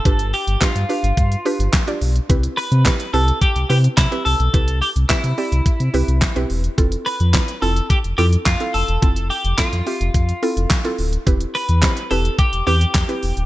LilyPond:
<<
  \new Staff \with { instrumentName = "Clean electric guitar" } { \time 4/4 \key c \major \tempo 4 = 107 a'8 g'8 f'2~ f'8 r8 | r8 b'4 a'8 g'8 g'8 e'8 a'8~ | a'8 g'8 e'2~ e'8 r8 | r8 b'4 a'8 g'8 g'8 f'8 a'8~ |
a'8 g'8 f'2~ f'8 r8 | r8 b'4 a'8 g'8 g'4. | }
  \new Staff \with { instrumentName = "Synth pluck" } { \time 4/4 \key c \major <d' f' g' b'>8. r16 <d' f' g' b'>16 r16 <d' f' g' b'>8. r16 <d' f' g' b'>8 r16 <d' f' g' d''>8 r16 | <c' e' g' b'>8. r16 <c' e' g' b'>16 r16 <c' e' g' b'>8. r16 <c' e' g' b'>8 r16 <c' e' g' b'>8 r16 | <c' e' g' b'>8. r16 <c' e' g' b'>16 r16 <c' e' g' d''>8. r16 <c' e' g' b'>8 r16 <c' e' g' b'>8 r16 | <c' e' f' a'>8. r16 <c' e' f' b'>16 r16 <c' e' f' a'>8. r16 <c' e' f' a'>8 r16 <c' e' f' a'>8 r16 |
<c' e' f' a'>8. r16 <c' e' f' a'>16 r16 <c' f' g' e''>8. r16 <c' e' f' a'>8 r16 <c' e' f' a'>8 r16 | <c' e' g' b'>8. r16 <c' e' g' c''>16 r16 <c' e' g' b'>8. r16 <c' e' g' b'>8 r16 <c' e' g' b'>8 r16 | }
  \new Staff \with { instrumentName = "Sub bass" } { \clef bass \time 4/4 \key c \major g,,8. g,,16 g,16 g,16 r16 g,,16 g,8 r16 g,,16 r8 b,,8 | c,8 r16 c8 r16 c,8 r16 c,16 c8 c16 r16 c,16 b,,16 | c,8. c,16 c16 c16 r16 c,16 r16 c16 c,16 c,8 b,,16 e,,8 | f,,8 r16 f,8 r16 f,,8 r16 f,,16 f,8 f,16 r16 f,,16 e,,16 |
f,,8. f,,16 f,16 f,16 r16 f,,16 f,8 r16 f,,16 r8 d,,8 | e,,8 r16 e,8 r16 e,,8 r16 e,,16 e,8 e,16 r16 e,,16 d,,16 | }
  \new DrumStaff \with { instrumentName = "Drums" } \drummode { \time 4/4 <hh bd>16 hh16 hho16 hh16 <hc hh bd sn>16 hh16 hho16 hh16 <hh bd>16 hh16 hho16 hh16 <hc hh bd sn>16 hh16 hho16 hh16 | <hh bd>16 hh16 hho16 hh16 <hc hh bd sn>16 hh16 hho16 hh16 <hh bd>16 hh16 hho16 hh16 <hc hh bd sn>16 hh16 hho16 hh16 | <hh bd>16 hh16 hho16 hh16 <hc hh bd sn>16 hh16 hho16 hh16 <hh bd>16 hh16 hho16 hh16 <hc hh bd sn>16 hh16 hho16 hh16 | <hh bd>16 hh16 hho16 hh16 <hc hh bd sn>16 hh16 hho16 hh16 <hh bd>16 hh16 hho16 hh16 <hc hh bd sn>16 hh16 hho16 hh16 |
<hh bd>16 hh16 hho16 hh16 <hc hh bd sn>16 hh16 hho16 hh16 <hh bd>16 hh16 hho16 hh16 <hc hh bd sn>16 hh16 hho16 hh16 | <hh bd>16 hh16 hho16 hh16 <hc hh bd sn>16 hh16 hho16 hh16 <hh bd>16 hh16 hho16 hh16 <hc hh bd sn>16 hh16 hho16 hh16 | }
>>